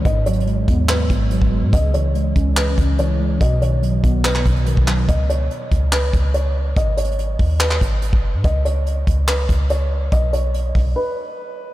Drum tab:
HH |x-----x-x-x-x-----x-----x-----x-----x-----------|x-----x-----x-----x-----x-----x-----x-----------|x-----x-----x-----x-----x-----x--x--x-----------|x-----x-----x-----x-----x-----x-----x-----------|
CP |------------------------x-----------------------|------------------------x-----------------------|------------------------x--x--------------x-----|------------------------x-----------------------|
BD |o-----------------o-----------o--------o--------|o-----------------o-----------o-----------------|o-----------------o-----------o--------o--------|o-----------------o-----------o-----------------|

HH |x-----x-x-x-x-----o-----x-----x-----x-----------|x-----x-----x-----x-----x-----x-----x-----------|x-----x-----x-----o-----------------------------|
CP |------------------------x--x--------------------|------------------------x-----------------------|------------------------------------------------|
BD |o-----------------o-----------o--------o--------|o-----------------o-----------o-----------------|o-----------------o-----------------------------|